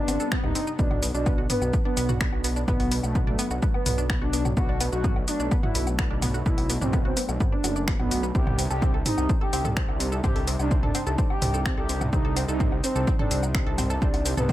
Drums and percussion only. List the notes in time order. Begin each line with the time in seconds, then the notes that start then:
0.08 open hi-hat, low woodblock, shaker
0.20 shaker
0.32 finger snap, kick, shaker
0.44 mid tom, low woodblock
0.55 open hi-hat, shaker
0.67 shaker
0.79 kick, shaker
0.91 mid tom, low woodblock
1.03 open hi-hat, shaker
1.15 shaker
1.26 kick, low woodblock, shaker
1.50 mid tom, open hi-hat, shaker
1.62 low woodblock, shaker
1.73 kick, shaker
1.97 open hi-hat, low woodblock, shaker
2.09 mid tom, shaker
2.21 finger snap, kick, shaker
2.33 low woodblock
2.44 open hi-hat, shaker
2.56 shaker
2.68 kick, mid tom, low woodblock, shaker
2.80 open hi-hat
2.92 open hi-hat, shaker
3.03 low woodblock, shaker
3.15 kick, shaker
3.27 mid tom
3.39 open hi-hat, low woodblock, shaker
3.51 shaker
3.62 kick, shaker
3.74 low woodblock
3.86 mid tom, open hi-hat, shaker
3.98 shaker
4.10 finger snap, kick, low woodblock, shaker
4.33 open hi-hat, shaker
4.45 mid tom, low woodblock, shaker
4.57 kick, shaker
4.81 open hi-hat, low woodblock, shaker
4.92 shaker
5.04 kick, mid tom, shaker
5.16 low woodblock
5.28 open hi-hat, shaker
5.40 shaker
5.51 kick, low woodblock, shaker
5.63 mid tom
5.75 open hi-hat, shaker
5.87 low woodblock, shaker
5.99 finger snap, kick, shaker
6.22 mid tom, open hi-hat, low woodblock, shaker
6.34 shaker
6.46 kick, shaker
6.58 open hi-hat, low woodblock
6.70 open hi-hat, shaker
6.82 mid tom, shaker
6.93 kick, low woodblock, shaker
7.17 open hi-hat, shaker
7.29 low woodblock, shaker
7.40 kick, mid tom, shaker
7.64 open hi-hat, low woodblock, shaker
7.76 shaker
7.88 finger snap, kick, shaker
8.00 mid tom, low woodblock
8.11 open hi-hat, shaker
8.23 shaker
8.35 kick, shaker
8.47 mid tom, low woodblock
8.59 open hi-hat, shaker
8.70 shaker
8.82 kick, low woodblock, shaker
9.06 mid tom, open hi-hat, shaker
9.18 low woodblock, shaker
9.29 kick, shaker
9.53 open hi-hat, low woodblock, shaker
9.65 mid tom, shaker
9.77 finger snap, kick, shaker
9.89 low woodblock
10.00 open hi-hat, shaker
10.12 shaker
10.24 kick, mid tom, low woodblock, shaker
10.36 open hi-hat
10.48 open hi-hat, shaker
10.59 low woodblock, shaker
10.71 kick, shaker
10.83 mid tom
10.95 open hi-hat, low woodblock, shaker
11.07 shaker
11.18 kick, shaker
11.30 low woodblock
11.42 mid tom, open hi-hat, shaker
11.54 shaker
11.66 finger snap, kick, low woodblock, shaker
11.89 open hi-hat, shaker
12.01 mid tom, low woodblock, shaker
12.13 kick, shaker
12.37 open hi-hat, low woodblock, shaker
12.48 shaker
12.60 kick, mid tom, shaker
12.72 low woodblock
12.84 open hi-hat, shaker
12.96 shaker
13.07 kick, low woodblock, shaker
13.19 mid tom
13.31 open hi-hat, shaker
13.43 low woodblock, shaker
13.55 finger snap, kick, shaker
13.78 mid tom, open hi-hat, low woodblock, shaker
13.90 shaker
14.02 kick, shaker
14.14 open hi-hat, low woodblock
14.26 open hi-hat, shaker
14.37 mid tom, shaker
14.49 kick, low woodblock, shaker